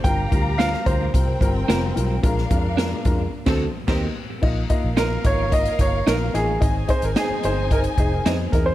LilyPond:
<<
  \new Staff \with { instrumentName = "Grand piano" } { \time 4/4 \key bes \mixolydian \tempo 4 = 110 g''4 f''8 c''2~ c''8~ | c''2. r4 | r4 bes'8 des''8 ees''8 des''8 bes'8 aes'8~ | aes'8 c''16 bes'16 aes'8 c''8 bes'8 aes'8 r8 bes'16 c''16 | }
  \new Staff \with { instrumentName = "String section" } { \time 4/4 \key bes \mixolydian <g' f'' bes''>2 <c' bes' g''>2 | <d' bes' f''>2 r16 <c' a'>8 r16 <c' bes' ees''>8 r8 | <bes' f''>1 | <ees' c'' aes''>1 | }
  \new Staff \with { instrumentName = "Clean electric guitar" } { \time 4/4 \key bes \mixolydian r4 <d' f' bes'>8 r4. <c' f' bes'>8 r8 | r4 <d' aes' bes'>8 r8. <c' fis' a'>8 r16 <c' g' bes'>8 r8 | r4 <ees' f' bes'>8 r4. <ees' f' bes'>8 r8 | r4 <c' ees' aes'>8 r4. <c' ees' aes'>8 r8 | }
  \new Staff \with { instrumentName = "Upright piano" } { \time 4/4 \key bes \mixolydian <g d' f' bes'>16 r16 <g d' f' bes'>16 r16 <g d' f' bes'>16 r16 <g d' f' bes'>16 r16 <g c' f' bes'>16 r16 <g c' f' bes'>16 r16 <g c' f' bes'>16 r16 <g c' f' bes'>16 r16 | <aes d' f' bes'>16 r16 <aes d' f' bes'>16 r16 <aes d' f' bes'>16 r16 <aes d' f' bes'>16 r8 <a d' fis' c''>8 r16 <bes ees' g' c''>8 r8 | <bes ees' f' ees''>16 r16 <bes ees' f' ees''>16 r16 <bes ees' f' ees''>16 r16 <bes ees' f' ees''>16 r16 <bes ees' f' ees''>16 r16 <bes ees' f' ees''>16 r16 <bes ees' f' ees''>16 r16 <bes ees' f' ees''>16 r16 | <c' ees' aes' ees''>16 r16 <c' ees' aes' ees''>16 r16 <c' ees' aes' ees''>16 r16 <c' ees' aes' ees''>16 r16 <c' ees' aes' ees''>16 r16 <c' ees' aes' ees''>16 r16 <c' ees' aes' ees''>16 r16 <c' ees' aes' ees''>16 r16 | }
  \new Staff \with { instrumentName = "Fingered electric bass" } { \clef bass \time 4/4 \key bes \mixolydian g,,8 d,4 d,8 c,8 g,,8 f,,8 ces,8 | bes,,8 f,4 f,8 r16 d,8 r16 ees,8 r8 | bes,,8 r16 bes,,8. aes,,4 g,,8 bes,,8 a,,8 | aes,,8 r16 aes,,16 r8 g,,4 f,,8 f,8 e,8 | }
  \new DrumStaff \with { instrumentName = "Drums" } \drummode { \time 4/4 <hh bd>8 <hh bd>8 <hh sn>16 sn16 <hh bd>8 <hh bd>8 <hh bd>8 <hh sn>8 hh8 | <hh bd>16 sn16 <hh bd>8 <hh sn>8 <hh bd>8 r16 <cymc bd sn>8. <cymc bd sn>4 | <cymc bd>8 <hh bd>8 <hh sn>8 <hh bd>8 <hh bd>16 hh16 <hh bd>8 <hh sn>8 <hh sn>8 | <hh bd>8 <hh bd>16 hh16 <hh sn>8 hh8 <hh bd>16 hh16 <hh bd>8 <hh sn>8 <hh bd sn>8 | }
>>